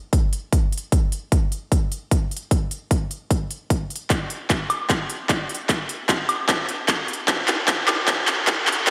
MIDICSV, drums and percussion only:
0, 0, Header, 1, 2, 480
1, 0, Start_track
1, 0, Tempo, 397351
1, 1115, Time_signature, 4, 2, 24, 8
1, 10756, End_track
2, 0, Start_track
2, 0, Title_t, "Drums"
2, 154, Note_on_c, 9, 36, 90
2, 155, Note_on_c, 9, 42, 73
2, 275, Note_off_c, 9, 36, 0
2, 276, Note_off_c, 9, 42, 0
2, 395, Note_on_c, 9, 42, 65
2, 516, Note_off_c, 9, 42, 0
2, 634, Note_on_c, 9, 36, 89
2, 635, Note_on_c, 9, 42, 77
2, 755, Note_off_c, 9, 36, 0
2, 756, Note_off_c, 9, 42, 0
2, 875, Note_on_c, 9, 42, 49
2, 936, Note_off_c, 9, 42, 0
2, 936, Note_on_c, 9, 42, 64
2, 1057, Note_off_c, 9, 42, 0
2, 1114, Note_on_c, 9, 36, 95
2, 1114, Note_on_c, 9, 42, 74
2, 1235, Note_off_c, 9, 36, 0
2, 1235, Note_off_c, 9, 42, 0
2, 1355, Note_on_c, 9, 42, 61
2, 1476, Note_off_c, 9, 42, 0
2, 1594, Note_on_c, 9, 36, 95
2, 1595, Note_on_c, 9, 42, 75
2, 1715, Note_off_c, 9, 36, 0
2, 1715, Note_off_c, 9, 42, 0
2, 1835, Note_on_c, 9, 42, 56
2, 1955, Note_off_c, 9, 42, 0
2, 2074, Note_on_c, 9, 36, 91
2, 2076, Note_on_c, 9, 42, 70
2, 2194, Note_off_c, 9, 36, 0
2, 2196, Note_off_c, 9, 42, 0
2, 2315, Note_on_c, 9, 42, 63
2, 2436, Note_off_c, 9, 42, 0
2, 2553, Note_on_c, 9, 36, 96
2, 2555, Note_on_c, 9, 42, 76
2, 2674, Note_off_c, 9, 36, 0
2, 2676, Note_off_c, 9, 42, 0
2, 2795, Note_on_c, 9, 42, 48
2, 2857, Note_off_c, 9, 42, 0
2, 2857, Note_on_c, 9, 42, 60
2, 2978, Note_off_c, 9, 42, 0
2, 3033, Note_on_c, 9, 36, 96
2, 3034, Note_on_c, 9, 42, 73
2, 3154, Note_off_c, 9, 36, 0
2, 3155, Note_off_c, 9, 42, 0
2, 3275, Note_on_c, 9, 42, 60
2, 3396, Note_off_c, 9, 42, 0
2, 3513, Note_on_c, 9, 36, 94
2, 3515, Note_on_c, 9, 42, 72
2, 3634, Note_off_c, 9, 36, 0
2, 3635, Note_off_c, 9, 42, 0
2, 3755, Note_on_c, 9, 42, 58
2, 3876, Note_off_c, 9, 42, 0
2, 3993, Note_on_c, 9, 36, 92
2, 3995, Note_on_c, 9, 42, 73
2, 4114, Note_off_c, 9, 36, 0
2, 4116, Note_off_c, 9, 42, 0
2, 4235, Note_on_c, 9, 42, 60
2, 4356, Note_off_c, 9, 42, 0
2, 4473, Note_on_c, 9, 36, 98
2, 4474, Note_on_c, 9, 42, 70
2, 4594, Note_off_c, 9, 36, 0
2, 4595, Note_off_c, 9, 42, 0
2, 4716, Note_on_c, 9, 42, 47
2, 4778, Note_off_c, 9, 42, 0
2, 4778, Note_on_c, 9, 42, 62
2, 4899, Note_off_c, 9, 42, 0
2, 4953, Note_on_c, 9, 36, 100
2, 4955, Note_on_c, 9, 39, 45
2, 4955, Note_on_c, 9, 42, 72
2, 5074, Note_off_c, 9, 36, 0
2, 5076, Note_off_c, 9, 39, 0
2, 5076, Note_off_c, 9, 42, 0
2, 5195, Note_on_c, 9, 42, 60
2, 5316, Note_off_c, 9, 42, 0
2, 5433, Note_on_c, 9, 36, 99
2, 5436, Note_on_c, 9, 39, 52
2, 5436, Note_on_c, 9, 42, 75
2, 5554, Note_off_c, 9, 36, 0
2, 5557, Note_off_c, 9, 39, 0
2, 5557, Note_off_c, 9, 42, 0
2, 5677, Note_on_c, 9, 42, 59
2, 5677, Note_on_c, 9, 76, 62
2, 5797, Note_off_c, 9, 42, 0
2, 5797, Note_off_c, 9, 76, 0
2, 5914, Note_on_c, 9, 36, 95
2, 5916, Note_on_c, 9, 39, 51
2, 5916, Note_on_c, 9, 42, 69
2, 6034, Note_off_c, 9, 36, 0
2, 6036, Note_off_c, 9, 39, 0
2, 6036, Note_off_c, 9, 42, 0
2, 6155, Note_on_c, 9, 42, 63
2, 6276, Note_off_c, 9, 42, 0
2, 6394, Note_on_c, 9, 36, 100
2, 6395, Note_on_c, 9, 39, 54
2, 6395, Note_on_c, 9, 42, 73
2, 6515, Note_off_c, 9, 36, 0
2, 6516, Note_off_c, 9, 39, 0
2, 6516, Note_off_c, 9, 42, 0
2, 6636, Note_on_c, 9, 42, 48
2, 6698, Note_off_c, 9, 42, 0
2, 6698, Note_on_c, 9, 42, 63
2, 6819, Note_off_c, 9, 42, 0
2, 6874, Note_on_c, 9, 36, 98
2, 6876, Note_on_c, 9, 39, 56
2, 6876, Note_on_c, 9, 42, 74
2, 6995, Note_off_c, 9, 36, 0
2, 6997, Note_off_c, 9, 39, 0
2, 6997, Note_off_c, 9, 42, 0
2, 7117, Note_on_c, 9, 42, 64
2, 7238, Note_off_c, 9, 42, 0
2, 7354, Note_on_c, 9, 36, 99
2, 7357, Note_on_c, 9, 39, 62
2, 7357, Note_on_c, 9, 42, 76
2, 7475, Note_off_c, 9, 36, 0
2, 7478, Note_off_c, 9, 39, 0
2, 7478, Note_off_c, 9, 42, 0
2, 7597, Note_on_c, 9, 42, 60
2, 7597, Note_on_c, 9, 76, 64
2, 7718, Note_off_c, 9, 42, 0
2, 7718, Note_off_c, 9, 76, 0
2, 7834, Note_on_c, 9, 36, 97
2, 7836, Note_on_c, 9, 39, 66
2, 7836, Note_on_c, 9, 42, 76
2, 7955, Note_off_c, 9, 36, 0
2, 7957, Note_off_c, 9, 39, 0
2, 7957, Note_off_c, 9, 42, 0
2, 8077, Note_on_c, 9, 42, 68
2, 8198, Note_off_c, 9, 42, 0
2, 8314, Note_on_c, 9, 36, 98
2, 8315, Note_on_c, 9, 39, 69
2, 8315, Note_on_c, 9, 42, 78
2, 8435, Note_off_c, 9, 36, 0
2, 8436, Note_off_c, 9, 39, 0
2, 8436, Note_off_c, 9, 42, 0
2, 8555, Note_on_c, 9, 42, 50
2, 8618, Note_off_c, 9, 42, 0
2, 8618, Note_on_c, 9, 42, 66
2, 8738, Note_off_c, 9, 42, 0
2, 8794, Note_on_c, 9, 36, 99
2, 8795, Note_on_c, 9, 39, 73
2, 8795, Note_on_c, 9, 42, 81
2, 8915, Note_off_c, 9, 36, 0
2, 8916, Note_off_c, 9, 39, 0
2, 8916, Note_off_c, 9, 42, 0
2, 9035, Note_on_c, 9, 39, 74
2, 9035, Note_on_c, 9, 42, 67
2, 9156, Note_off_c, 9, 39, 0
2, 9156, Note_off_c, 9, 42, 0
2, 9274, Note_on_c, 9, 36, 104
2, 9275, Note_on_c, 9, 39, 78
2, 9275, Note_on_c, 9, 42, 84
2, 9395, Note_off_c, 9, 36, 0
2, 9396, Note_off_c, 9, 39, 0
2, 9396, Note_off_c, 9, 42, 0
2, 9516, Note_on_c, 9, 39, 84
2, 9516, Note_on_c, 9, 42, 63
2, 9516, Note_on_c, 9, 76, 67
2, 9637, Note_off_c, 9, 39, 0
2, 9637, Note_off_c, 9, 42, 0
2, 9637, Note_off_c, 9, 76, 0
2, 9754, Note_on_c, 9, 36, 96
2, 9757, Note_on_c, 9, 39, 78
2, 9757, Note_on_c, 9, 42, 82
2, 9875, Note_off_c, 9, 36, 0
2, 9878, Note_off_c, 9, 39, 0
2, 9878, Note_off_c, 9, 42, 0
2, 9995, Note_on_c, 9, 39, 84
2, 9995, Note_on_c, 9, 42, 69
2, 10116, Note_off_c, 9, 39, 0
2, 10116, Note_off_c, 9, 42, 0
2, 10234, Note_on_c, 9, 36, 99
2, 10235, Note_on_c, 9, 39, 91
2, 10235, Note_on_c, 9, 42, 83
2, 10355, Note_off_c, 9, 36, 0
2, 10356, Note_off_c, 9, 39, 0
2, 10356, Note_off_c, 9, 42, 0
2, 10476, Note_on_c, 9, 39, 90
2, 10476, Note_on_c, 9, 42, 52
2, 10538, Note_off_c, 9, 42, 0
2, 10538, Note_on_c, 9, 42, 70
2, 10597, Note_off_c, 9, 39, 0
2, 10659, Note_off_c, 9, 42, 0
2, 10714, Note_on_c, 9, 36, 97
2, 10716, Note_on_c, 9, 39, 90
2, 10716, Note_on_c, 9, 42, 83
2, 10756, Note_off_c, 9, 36, 0
2, 10756, Note_off_c, 9, 39, 0
2, 10756, Note_off_c, 9, 42, 0
2, 10756, End_track
0, 0, End_of_file